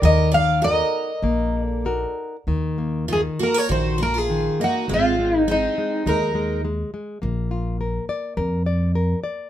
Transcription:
0.02 upright bass D#2, nylon-string guitar D#3, twelve-string acoustic guitar A#4 D#5
0.32 twelve-string acoustic guitar D5 F5
0.61 nylon-string guitar D#4 F#4 A#4, twelve-string acoustic guitar A#4 D#5
1.22 upright bass A#1, nylon-string guitar A#3
1.60 twelve-string acoustic guitar A4 D5
1.85 nylon-string guitar D#4 F#4 A#4
2.47 upright bass D#2, nylon-string guitar D#3
2.78 nylon-string guitar A#3
3.08 nylon-string guitar D#3, twelve-string acoustic guitar F4
3.13 twelve-string acoustic guitar G#4
3.39 nylon-string guitar A#3, twelve-string acoustic guitar F#4 A#4
3.54 twelve-string acoustic guitar A#4 C#5
3.69 upright bass A#1, nylon-string guitar D#3, twelve-string acoustic guitar F#4 C5
3.98 nylon-string guitar A#3, twelve-string acoustic guitar F#4
4.03 twelve-string acoustic guitar A#4
4.14 twelve-string acoustic guitar F4
4.18 twelve-string acoustic guitar G#4
4.30 nylon-string guitar D#3
4.60 nylon-string guitar A#3, twelve-string acoustic guitar D#4 F#4
4.88 upright bass G#1, nylon-string guitar G#3, twelve-string acoustic guitar C4
4.94 twelve-string acoustic guitar F4
5.19 nylon-string guitar G#3
5.31 twelve-string acoustic guitar A#3
5.39 twelve-string acoustic guitar D#4
5.48 nylon-string guitar G#3, twelve-string acoustic guitar C4 D#4
5.78 nylon-string guitar G#3
6.06 upright bass D#2, nylon-string guitar G#3, twelve-string acoustic guitar D#4 A#4
6.35 nylon-string guitar G#3
6.65 nylon-string guitar G#3
6.94 nylon-string guitar G#3
7.22 upright bass A#1, nylon-string guitar A#3
7.51 nylon-string guitar F4
7.81 nylon-string guitar A#4
8.09 nylon-string guitar D5
8.37 upright bass F2, nylon-string guitar A#4
8.66 nylon-string guitar D5
8.95 nylon-string guitar A#4
9.24 nylon-string guitar D5

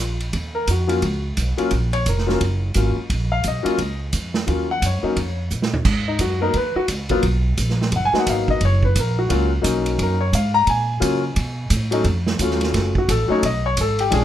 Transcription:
Already playing: upright bass A#1, grand piano F4
0.20 ride
0.33 upright bass D#2, kick, ride
0.55 grand piano A#4
0.67 upright bass F2, grand piano F#4, kick, hi-hat pedal, ride
0.87 grand piano F#3 A#3 C#4 F4, ride
1.02 upright bass C#2, kick, ride
1.37 upright bass B1, kick, hi-hat pedal, ride
1.57 grand piano F#3 A#3 C#4 F4, muted upright bass stroke, ride
1.71 upright bass A#1, kick, ride
1.93 grand piano C#5, ride
2.06 upright bass F1, grand piano A#4, kick, hi-hat pedal, ride
2.18 snare
2.27 grand piano F#3 A#3 C#4 F4, snare
2.41 upright bass F#1, kick, ride
2.74 upright bass G#1, grand piano F#3 A#3 C#4 F4, kick, hi-hat pedal, ride
2.96 muted upright bass stroke
3.10 upright bass A#1, kick, ride
3.32 grand piano F5
3.44 upright bass B1, kick, hi-hat pedal, ride
3.48 grand piano D#5
3.63 grand piano F#3 A#3 C#4 F4, muted upright bass stroke, ride
3.78 upright bass C#2, kick, ride
4.13 upright bass F2, kick, hi-hat pedal, ride
4.34 snare
4.47 upright bass D#2, grand piano F#3 A#3 C#4 F4, kick, ride
4.71 grand piano F#5
4.82 upright bass F#2, kick, hi-hat pedal, ride
4.86 grand piano C#5
5.03 grand piano F#3 A#3 C#4 D#4, muted upright bass stroke
5.16 upright bass F2, kick, ride
5.50 upright bass A#2, hi-hat pedal
5.62 snare
5.73 floor tom
5.85 upright bass G#2, kick, crash
6.08 grand piano D#4
6.19 upright bass F#2, grand piano F#4, kick, hi-hat pedal, ride
6.41 grand piano F#3 A#3 B3 D#4 A#4
6.54 upright bass D#2, grand piano B4, kick, ride
6.75 grand piano F#4, muted upright bass stroke
6.88 upright bass C#2, kick, hi-hat pedal, ride
7.09 grand piano F#3 A#3 B3 F4, kick, ride
7.23 upright bass B1, kick, ride
7.57 upright bass A#1, kick, hi-hat pedal, ride
7.70 snare
7.81 snare
7.92 upright bass F#1, kick, ride
7.96 grand piano F#5
8.05 grand piano G#5
8.13 grand piano F#3 A#3 B3 D#4, muted upright bass stroke, snare
8.19 grand piano F#5
8.27 upright bass G#1, grand piano F5, kick, hi-hat pedal, ride
8.48 grand piano D#5, kick
8.61 upright bass F#1, kick, ride
8.65 grand piano C#5
8.83 grand piano B4, kick
8.96 upright bass A#1, kick, hi-hat pedal, ride
9.00 grand piano A#4
9.19 grand piano F#4
9.29 upright bass C#2, grand piano F#3 A#3 C#4 F4, kick, ride
9.62 upright bass B1, grand piano F#3 A#3 C#4 D#4, kick, hi-hat pedal, ride
9.86 ride
9.99 upright bass F#2, grand piano A#4, kick, ride
10.21 grand piano C#5
10.33 upright bass G#2, grand piano F5, kick, hi-hat pedal, ride
10.54 grand piano A#5
10.67 upright bass A#2, grand piano G#5, kick, ride
11.00 upright bass C#3, grand piano F#3 A#3 C#4 F4, kick, hi-hat pedal, ride
11.36 upright bass B2, kick, ride
11.70 upright bass A2, kick, hi-hat pedal, ride
11.91 grand piano F#3 A3 C#4 D#4, ride
12.04 upright bass F2, kick, ride
12.27 snare
12.39 upright bass D#2, grand piano F#3 A3 C#4 F4, kick, hi-hat pedal, ride
12.51 snare
12.61 snare, ride
12.74 upright bass F#1, kick, snare, ride
12.95 grand piano F#4, kick
13.08 upright bass A1, grand piano A4, kick, hi-hat pedal, ride
13.28 grand piano F#3 A3 C#4 D#4 C#5, muted upright bass stroke
13.43 upright bass B1, grand piano D#5, kick, ride
13.66 grand piano C#5
13.77 upright bass G#1, grand piano A4, kick, hi-hat pedal, ride
13.99 grand piano G4, ride
14.10 upright bass A#1, grand piano F3 G#3 C#4 D4 G#4, kick, ride

